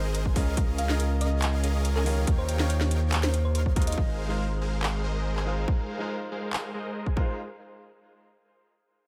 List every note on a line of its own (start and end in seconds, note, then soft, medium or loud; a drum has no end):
0.00 0.34 G#1 medium
0.00 0.23 G#3 medium
0.00 0.38 G#3 loud
0.00 0.38 D#4 medium
0.00 0.36 F4 medium
0.00 0.23 G#4 medium
0.00 0.23 A#4 medium
0.00 0.37 A#4 medium
0.00 0.23 C5 medium
0.00 0.32 C5 medium
0.00 0.38 C5 loud
0.00 0.23 D#5 medium
0.15 closed hi-hat medium
0.25 0.33 G#3 medium
0.25 0.33 G#4 medium
0.25 0.33 A#4 medium
0.25 0.33 C5 medium
0.25 0.33 G#5 loud
0.25 kick medium
0.34 2.25 C#2 medium
0.34 0.86 C#3 medium
0.34 0.86 C#4 medium
0.34 0.55 C#4 medium
0.34 0.87 F4 medium
0.34 0.55 G#4 medium
0.34 0.55 A#4 medium
0.34 0.87 A#4 medium
0.34 0.55 D#5 medium
0.34 0.88 D#5 loud
0.34 0.55 F5 medium
0.34 kick loud
0.34 open hi-hat medium
0.57 0.87 C#4 medium
0.57 0.87 G#4 medium
0.57 0.87 A#4 medium
0.57 0.87 D#5 medium
0.57 kick loud
0.57 closed hi-hat medium
0.78 0.98 F5 medium
0.78 closed hi-hat medium
0.87 1.60 C#3 medium
0.87 1.61 C#4 medium
0.87 1.03 C#4 medium
0.87 1.61 F4 medium
0.87 1.03 G#4 medium
0.87 1.03 A#4 medium
0.87 1.62 A#4 medium
0.87 1.03 D#5 medium
0.87 1.03 F5 loud
0.87 snare medium
0.91 1.62 D#5 loud
1.00 closed hi-hat medium
1.21 1.61 C#4 medium
1.21 1.61 G#4 medium
1.21 1.61 A#4 medium
1.21 1.61 D#5 medium
1.21 1.81 D#5 medium
1.21 1.61 F5 medium
1.21 closed hi-hat medium
1.42 clap loud
1.42 closed hi-hat medium
1.63 1.93 C#4 medium
1.63 1.93 G#4 medium
1.63 1.93 A#4 medium
1.63 1.93 D#5 medium
1.63 1.93 F5 loud
1.63 closed hi-hat medium
1.85 closed hi-hat medium
1.96 2.04 C#4 medium
1.96 2.04 G#4 medium
1.96 2.15 A#4 loud
1.96 2.04 A#4 medium
1.96 2.04 D#5 medium
1.96 2.04 G#5 loud
1.96 clap soft
2.04 2.56 D#3 medium
2.04 2.25 C#4 medium
2.04 2.56 D#4 medium
2.04 2.57 F4 medium
2.04 2.57 G4 medium
2.04 2.25 G#4 medium
2.04 2.25 A#4 medium
2.04 2.58 C#5 loud
2.04 2.25 D#5 medium
2.04 2.25 F5 medium
2.04 open hi-hat medium
2.27 3.96 D#2 medium
2.27 2.57 D#4 medium
2.27 2.57 A#4 medium
2.27 2.57 C#5 medium
2.27 2.57 F5 medium
2.27 2.57 G5 medium
2.27 kick loud
2.27 closed hi-hat medium
2.38 2.57 C5 medium
2.49 closed hi-hat medium
2.58 3.30 D#3 loud
2.58 3.31 D#4 medium
2.58 2.74 D#4 medium
2.58 3.31 F4 medium
2.58 3.32 G4 medium
2.58 2.74 A#4 medium
2.58 2.74 C#5 medium
2.58 3.32 C#5 loud
2.58 2.74 F5 medium
2.58 2.74 G5 loud
2.58 snare medium
2.70 closed hi-hat medium
2.81 snare medium
2.91 3.31 D#4 medium
2.91 3.31 A#4 medium
2.91 3.31 C#5 medium
2.91 3.31 F5 medium
2.91 3.31 G5 medium
2.91 closed hi-hat medium
3.12 clap loud
3.12 closed hi-hat medium
3.23 3.42 C5 medium
3.23 snare medium
3.34 closed hi-hat medium
3.45 3.51 C5 medium
3.55 3.95 D#4 medium
3.55 3.95 A#4 medium
3.55 3.62 C5 medium
3.55 3.95 C#5 medium
3.55 3.95 F5 medium
3.55 3.95 C6 loud
3.55 closed hi-hat medium
3.66 kick medium
3.75 4.18 G#3 medium
3.75 4.19 D#4 medium
3.75 4.19 F4 medium
3.75 4.19 A#4 medium
3.75 4.19 D#5 medium
3.75 kick loud
3.75 closed hi-hat medium
3.82 closed hi-hat medium
3.87 3.94 D#5 medium
3.87 closed hi-hat medium
3.92 closed hi-hat medium
3.98 5.66 G#1 medium
3.98 4.27 G#3 medium
3.98 4.27 A#4 medium
3.98 4.27 C5 medium
3.98 4.05 D#5 medium
3.98 kick loud
4.28 5.00 G#3 medium
4.28 4.44 G#3 medium
4.28 5.01 D#4 medium
4.28 5.01 F4 medium
4.28 4.44 G#4 medium
4.28 4.44 A#4 medium
4.28 5.02 A#4 medium
4.28 4.44 C5 medium
4.28 5.02 C5 loud
4.28 4.44 F5 loud
4.61 5.02 G#3 medium
4.61 5.02 G#4 medium
4.61 5.01 A#4 medium
4.61 5.02 C5 medium
4.61 5.01 F5 medium
4.83 clap loud
5.04 5.34 G#3 medium
5.04 5.34 G#4 medium
5.04 5.34 A#4 medium
5.04 5.34 C5 medium
5.04 5.34 D#5 loud
5.36 5.44 G#3 medium
5.36 5.44 G#4 medium
5.36 5.44 A#4 medium
5.36 5.44 C5 medium
5.36 5.44 G#5 medium
5.36 clap soft
5.45 5.96 G#3 medium
5.45 5.65 G#3 medium
5.45 5.97 D#4 medium
5.45 5.97 F4 medium
5.45 5.65 G#4 medium
5.45 5.65 A#4 medium
5.45 5.98 A#4 medium
5.45 5.65 C5 medium
5.45 5.98 C5 loud
5.45 5.65 F5 medium
5.68 5.97 G#3 medium
5.68 kick loud
5.98 6.71 G#3 medium
5.98 6.14 G#3 medium
5.98 6.71 D#4 medium
5.98 6.72 F4 medium
5.98 6.14 G#4 medium
5.98 6.14 A#4 medium
5.98 6.72 A#4 medium
5.98 6.14 C5 medium
5.98 6.73 C5 medium
5.98 6.14 F5 loud
6.32 6.72 G#3 medium
6.32 6.72 G#4 medium
6.32 6.72 A#4 medium
6.32 6.72 C5 medium
6.32 6.72 F5 medium
6.53 clap loud
6.74 7.04 G#3 medium
6.74 7.04 G#4 medium
6.74 7.04 A#4 medium
6.74 7.04 C5 medium
6.74 7.04 D#5 medium
7.06 7.14 G#3 medium
7.06 7.14 G#4 medium
7.06 7.14 A#4 medium
7.06 7.14 C5 medium
7.06 7.14 G#5 medium
7.06 kick medium
7.16 7.36 G#3 medium
7.16 7.37 D#4 medium
7.16 7.37 F4 medium
7.16 7.36 G#4 medium
7.16 7.36 A#4 medium
7.16 7.37 A#4 medium
7.16 7.36 C5 medium
7.16 7.37 C5 medium
7.16 7.36 F5 medium
7.16 kick loud